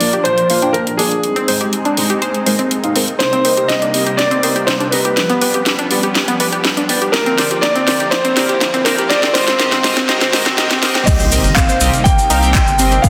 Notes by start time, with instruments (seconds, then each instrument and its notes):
Already playing: supersaw synth F3 A#3 D4, grand piano D5, riser
0.01 analog synth bass A#1, analog polysynth A#3 D4 F4 D5, open hi-hat
0.13 synth arpeggio sound G4, closed hi-hat
0.24 analog synth bass A#2, grand piano C5, synth arpeggio sound C5, closed hi-hat
0.38 closed hi-hat
0.50 analog synth bass A#1, analog polysynth A#3 D4 F4 F5, open hi-hat
0.62 analog polysynth A#3 D4 F4 G5, synth arpeggio sound D4, closed hi-hat
0.73 grand piano A#4, closed hi-hat
0.87 analog synth bass A#2, closed hi-hat
0.97 analog polysynth A#3 D4 F4 D5, synth arpeggio sound D4, grand piano G#4, open hi-hat
1.12 closed hi-hat
1.23 analog synth bass C2, supersaw synth G#3 C4 D#4, closed hi-hat
1.36 synth arpeggio sound C4, closed hi-hat
1.48 analog polysynth G#3 C4 D#4 C5, synth arpeggio sound C5, open hi-hat
1.61 analog synth bass C2, synth arpeggio sound G4, closed hi-hat
1.73 closed hi-hat
1.85 synth arpeggio sound D4, closed hi-hat
1.97 analog synth bass C2, analog polysynth G#3 C4 D#4 C5, open hi-hat
2.10 synth arpeggio sound G4, closed hi-hat
2.22 analog synth bass D#2, synth arpeggio sound C5, closed hi-hat
2.34 closed hi-hat
2.46 analog synth bass D#2, analog polysynth G#3 C4 D#4 A#4, synth arpeggio sound C5, open hi-hat
2.59 synth arpeggio sound C4, closed hi-hat
2.71 closed hi-hat
2.84 analog synth bass D#2, analog polysynth G#3 C4 D#4 F5, closed hi-hat
2.96 analog polysynth G#3 C4 D#4 A#4, synth arpeggio sound C4, open hi-hat
3.08 closed hi-hat
3.19 analog synth bass C2, supersaw synth C3 G3 A#3 C4, grand piano C5, snare, closed hi-hat
3.33 synth arpeggio sound C4, closed hi-hat
3.45 analog polysynth C4 G4 A#4 D#5, synth arpeggio sound C5, open hi-hat
3.57 analog synth bass G1, synth arpeggio sound G4, closed hi-hat
3.68 grand piano D#5, snare, closed hi-hat
3.82 synth arpeggio sound D4, closed hi-hat
3.94 analog synth bass C2, analog polysynth C4 G4 A#4 D#5, open hi-hat
4.07 synth arpeggio sound G4, closed hi-hat
4.17 analog synth bass G1, grand piano D5, snare, closed hi-hat
4.31 synth arpeggio sound C4, closed hi-hat
4.43 analog synth bass C2, analog polysynth C4 G4 A#4 D#5, synth arpeggio sound C5, open hi-hat
4.56 synth arpeggio sound G4, closed hi-hat
4.67 grand piano C5, snare, closed hi-hat
4.80 analog synth bass G1, synth arpeggio sound D4, closed hi-hat
4.91 analog polysynth C4 G4 A#4 D#5, grand piano B4, open hi-hat
5.05 synth arpeggio sound G4, closed hi-hat
5.17 analog synth bass G1, supersaw synth F3 B3, snare, closed hi-hat
5.30 synth arpeggio sound B3, closed hi-hat
5.41 analog polysynth B3 G4 B4 D5, synth arpeggio sound B4, open hi-hat
5.54 analog synth bass G1, synth arpeggio sound G4, closed hi-hat
5.66 snare, closed hi-hat
5.79 synth arpeggio sound D4, closed hi-hat
5.91 analog synth bass G1, analog polysynth B3 G4 B4 D5, open hi-hat
6.03 synth arpeggio sound G4, closed hi-hat
6.15 analog synth bass B1, snare, closed hi-hat
6.28 synth arpeggio sound B3, closed hi-hat
6.40 analog synth bass B1, analog polysynth B3 G4 B4 D5, synth arpeggio sound B4, open hi-hat
6.53 synth arpeggio sound G4, closed hi-hat
6.64 snare, closed hi-hat
6.77 analog synth bass B1, synth arpeggio sound D4, closed hi-hat
6.89 analog polysynth B3 G4 B4 D5, open hi-hat
7.02 synth arpeggio sound G4, closed hi-hat
7.12 analog synth bass A#1, supersaw synth D3 A#3, grand piano A#4, snare, closed hi-hat
7.26 synth arpeggio sound C4, closed hi-hat
7.38 analog polysynth C4 G4 A#4 D5, synth arpeggio sound C5, snare, open hi-hat
7.51 analog synth bass A#2, synth arpeggio sound G4, closed hi-hat
7.61 grand piano D5, snare, closed hi-hat
7.75 synth arpeggio sound C4, closed hi-hat
7.87 analog synth bass A#1, analog polysynth C4 G4 A#4 D5, synth arpeggio sound C5, snare, open hi-hat
8.00 synth arpeggio sound G4, closed hi-hat
8.11 analog synth bass A#2, grand piano C5, snare, closed hi-hat
8.25 synth arpeggio sound C4, closed hi-hat
8.37 analog synth bass A#1, analog polysynth C4 G4 A#4 D5, synth arpeggio sound C5, snare, open hi-hat
8.49 synth arpeggio sound G4, closed hi-hat
8.61 snare, closed hi-hat
8.74 analog synth bass A#2, synth arpeggio sound C4, closed hi-hat
8.84 analog polysynth C4 G4 A#4 D5, grand piano A#4, synth arpeggio sound C5, snare, open hi-hat
8.98 synth arpeggio sound G4, closed hi-hat
9.09 analog synth bass C2, supersaw synth D#3 G#3 C4, analog polysynth C4 G4 A#4 D#5, grand piano D5, snare, closed hi-hat
9.23 synth arpeggio sound C4, snare, closed hi-hat
9.34 analog polysynth C4 G4 A#4 D#5, grand piano C5, snare, open hi-hat
9.47 analog synth bass C2, synth arpeggio sound C4, snare, closed hi-hat
9.59 analog polysynth C4 G4 A#4 D#5, snare, closed hi-hat
9.72 synth arpeggio sound C4, snare, closed hi-hat
9.84 analog synth bass C2, analog polysynth C4 G4 A#4 D#5, snare, open hi-hat
9.97 synth arpeggio sound C4, snare, closed hi-hat
10.09 analog synth bass D#2, analog polysynth C4 G4 A#4 D#5, snare, closed hi-hat
10.21 synth arpeggio sound C4, snare, closed hi-hat
10.33 analog synth bass D#2, analog polysynth C4 G4 A#4 D#5, snare, open hi-hat
10.46 synth arpeggio sound C4, snare, closed hi-hat
10.58 analog polysynth C4 G4 A#4 D#5, snare, closed hi-hat
10.71 analog synth bass C2, synth arpeggio sound C4, snare, closed hi-hat
10.82 analog polysynth C4 G4 A#4 D#5, snare, open hi-hat
10.95 synth arpeggio sound C4, snare, closed hi-hat
11.06 analog synth bass C2, supersaw synth C3 G3 A#3 C4 D#4, grand piano D#5, kick, closed hi-hat, crash, impact, shaker
11.20 synth arpeggio sound C5, shaker
11.32 analog polysynth C4 G4 A#4 D#5, open hi-hat, shaker
11.44 analog synth bass G1, closed hi-hat, shaker
11.55 synth arpeggio sound C4, grand piano F5, kick, clap, closed hi-hat, shaker
11.69 synth arpeggio sound C5, closed hi-hat, shaker
11.81 analog synth bass C2, analog polysynth C4 G4 A#4 D#5, open hi-hat, shaker
11.94 closed hi-hat, shaker
12.04 analog synth bass G1, synth arpeggio sound A#3, grand piano G5, kick, closed hi-hat, shaker
12.19 shaker
12.30 analog synth bass C2, analog polysynth C4 G4 A#4 F5, synth arpeggio sound D#4, open hi-hat, shaker
12.43 analog polysynth C4 G4 A#4 G5, closed hi-hat, shaker
12.53 grand piano G5, kick, clap, closed hi-hat, shaker
12.67 analog synth bass G1, shaker
12.79 analog polysynth C4 G4 A#4 D#5, synth arpeggio sound C4, open hi-hat, shaker
12.91 synth arpeggio sound C4, closed hi-hat, shaker
13.02 analog synth bass G1, supersaw synth G3 B3, synth arpeggio sound B3, grand piano F5, kick, closed hi-hat, shaker